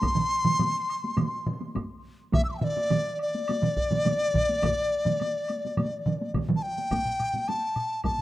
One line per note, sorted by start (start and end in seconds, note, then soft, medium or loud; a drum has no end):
0.00 1.48 C6 loud
0.00 taiko medium
0.00 taiko high medium
0.00 high woodblock medium
0.16 taiko low-mid medium
0.16 taiko mid medium
0.45 taiko low-mid loud
0.45 taiko mid loud
0.45 taiko high medium
0.59 taiko low-mid loud
0.59 taiko mid loud
0.59 taiko high medium
0.59 high woodblock soft
0.89 high woodblock soft
1.04 taiko high medium
1.17 taiko low-mid medium
1.17 taiko mid loud
1.17 taiko high medium
1.17 high woodblock medium
1.47 taiko low-mid medium
1.47 taiko mid loud
1.61 taiko high medium
1.75 taiko medium
1.75 taiko high medium
1.75 high woodblock soft
2.33 2.44 E5 medium
2.33 taiko loud
2.33 taiko low-mid medium
2.33 taiko mid medium
2.33 taiko high medium
2.33 high woodblock medium
2.45 2.49 E6 soft
2.49 2.54 C6 medium
2.49 2.51 D6 soft
2.54 2.58 G5 medium
2.54 2.56 A5 medium
2.59 2.65 E5 medium
2.59 taiko low-mid loud
2.59 taiko mid loud
2.63 3.21 D5 loud
2.77 taiko high medium
2.90 taiko low-mid loud
2.90 taiko mid loud
2.90 taiko high medium
2.90 high woodblock soft
3.19 6.31 D5 medium
3.19 high woodblock soft
3.35 taiko high medium
3.48 taiko high medium
3.48 high woodblock medium
3.62 taiko low-mid loud
3.62 taiko mid loud
3.77 taiko medium
3.91 taiko low-mid medium
3.91 taiko mid loud
3.91 taiko high medium
4.05 taiko low-mid medium
4.05 taiko mid loud
4.05 taiko high medium
4.05 high woodblock soft
4.34 taiko medium
4.34 taiko low-mid loud
4.34 taiko mid medium
4.49 taiko high medium
4.62 taiko loud
4.62 taiko low-mid loud
4.62 taiko mid medium
4.62 taiko high medium
4.62 high woodblock medium
5.05 taiko low-mid medium
5.05 taiko mid loud
5.05 taiko high medium
5.20 taiko high medium
5.20 high woodblock soft
5.48 taiko high soft
5.48 high woodblock soft
5.65 taiko high medium
5.77 taiko low-mid medium
5.77 taiko mid medium
5.77 taiko high medium
5.77 high woodblock medium
6.06 taiko low-mid loud
6.06 taiko mid loud
6.21 taiko high medium
6.34 taiko medium
6.34 taiko low-mid medium
6.34 taiko mid medium
6.34 taiko high medium
6.34 high woodblock soft
6.49 taiko low-mid loud
6.49 taiko mid loud
6.56 6.64 A5 medium
6.62 7.50 G5 medium
6.78 taiko high medium
6.91 taiko medium
6.91 taiko low-mid medium
6.91 taiko high medium
6.91 high woodblock soft
7.06 taiko low-mid medium
7.19 taiko low-mid medium
7.19 high woodblock soft
7.34 taiko low-mid medium
7.34 taiko high soft
7.47 8.04 A5 medium
7.47 taiko high medium
7.47 high woodblock soft
7.76 taiko low-mid medium
7.76 high woodblock soft
8.04 8.22 A5 medium
8.04 taiko medium
8.04 taiko low-mid medium
8.04 taiko high medium
8.04 high woodblock soft
8.18 taiko low-mid medium